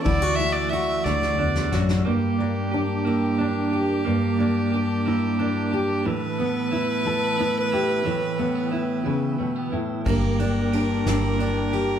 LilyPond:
<<
  \new Staff \with { instrumentName = "Tonewheel organ" } { \time 6/8 \key g \lydian \tempo 4. = 60 << { <d'' e'''>2. | <bes' d'''>2.~ | <bes' d'''>2. | <b' e'''>2.~ |
<b' e'''>2. | <bes' d'''>2. | } \\ { fis''2. | g''2. | a''2.~ | a''2. |
g''2.~ | g''2. | } >> }
  \new Staff \with { instrumentName = "Fiddle" } { \time 6/8 \key g \lydian d''8 e''16 d''16 e''8 d''4 r8 | g'2.~ | g'2. | b'2.~ |
b'2~ b'8 r8 | bes'2. | }
  \new Staff \with { instrumentName = "Steel-string acoustic guitar" } { \time 6/8 \key g \lydian << { e'16 fis'16 e'8 fis'2 | r8 bes8 d'8 e'8 d'8 g'8 | r8 bes8 d'8 e'8 d'8 g'8 | r8 b8 e'8 a'8 e'8 g'8 |
r8 b8 e'2 | r8 bes8 d'8 e'8 d'8 g'8 | } \\ { d,4 r8 d,8 e,8 fis,8 | g,2. | g,2. | a,2. |
a,4. cis8 b,8 a,8 | g,2. | } >> }
  \new Staff \with { instrumentName = "Clean electric guitar" } { \time 6/8 \key g \lydian e8 a8 fis'8 a8 d'8 fis'8 | bes8 d'8 g'8 bes8 d'8 g'8 | bes8 d'8 g'8 bes8 d'8 g'8 | e8 b8 e'8 e8 b8 e'8 |
e8 a16 b16 e'8 e8 a16 b16 e'8 | bes8 d'8 g'8 bes8 d'8 g'8 | }
  \new Staff \with { instrumentName = "Fingered electric bass" } { \clef bass \time 6/8 \key g \lydian d,4. d,4 a,,8 | r2. | r2. | r2. |
r2. | g,,4. g,,4. | }
  \new DrumStaff \with { instrumentName = "Drums" } \drummode { \time 6/8 <bd cymr>8 cymr8 cymr8 sn16 sn8 sn16 sn16 sn16 | r4. r4. | r4. r4. | r4. r4. |
r4. r4. | <bd cymr>8 cymr8 cymr8 <cymr sn>8 cymr8 cymr8 | }
>>